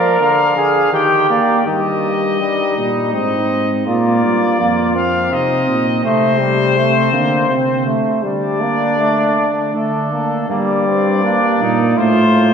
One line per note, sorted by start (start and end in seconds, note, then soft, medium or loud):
0.00 0.19 F3 medium
0.00 0.54 A#4 loud
0.00 0.20 D5 medium
0.20 0.56 D3 medium
0.20 0.92 F5 medium
0.56 0.92 D3 medium
0.56 0.92 G#4 loud
0.93 1.29 D#3 medium
0.93 1.65 G4 loud
0.93 1.29 G5 medium
1.30 1.66 A#3 medium
1.30 1.66 D5 medium
1.67 2.73 G2 medium
1.67 2.37 D#3 medium
1.67 2.37 G4 medium
1.67 3.10 D#5 medium
2.41 2.76 G3 medium
2.41 3.84 D#4 medium
2.77 3.15 A#2 medium
2.77 3.13 G3 medium
3.14 3.87 G#2 medium
3.14 3.85 C4 medium
3.14 3.70 D#5 medium
3.87 4.25 A#2 medium
3.87 4.58 A#3 medium
3.87 4.58 F4 medium
3.87 4.94 D5 medium
4.24 4.61 G2 medium
4.60 5.32 F2 medium
4.60 4.95 A#3 medium
4.60 5.31 F4 medium
4.96 5.87 C4 medium
4.96 5.35 F5 medium
5.32 5.68 C3 medium
5.32 6.03 D#4 medium
5.32 6.04 D#5 medium
5.68 6.04 A#2 medium
6.04 7.11 C3 loud
6.04 6.41 A3 medium
6.04 6.75 C4 medium
6.04 7.91 C5 loud
6.40 6.78 G3 medium
6.76 7.12 A3 medium
6.76 7.92 C4 medium
7.13 7.49 D3 loud
7.13 7.48 A#3 medium
7.49 7.96 C3 medium
7.49 7.85 C4 medium
7.86 8.24 A3 medium
8.23 9.70 D3 medium
8.23 8.62 G3 medium
8.23 9.70 D4 medium
8.23 9.70 D5 medium
8.60 9.00 A#3 medium
8.98 9.47 A3 medium
9.74 10.48 D3 medium
9.74 10.09 A3 medium
9.74 10.48 D4 medium
9.74 10.48 A4 medium
10.11 10.48 A#3 medium
10.49 11.57 G2 loud
10.49 11.20 G3 medium
10.49 10.84 A#3 medium
10.49 11.95 D5 medium
10.87 11.23 C4 medium
11.24 11.97 A#3 medium
11.24 11.63 D4 medium
11.61 11.97 A#2 medium
11.61 11.99 D#4 medium
11.98 12.54 A2 medium
11.98 12.54 A3 medium
11.98 12.54 F4 medium
11.98 12.54 C5 medium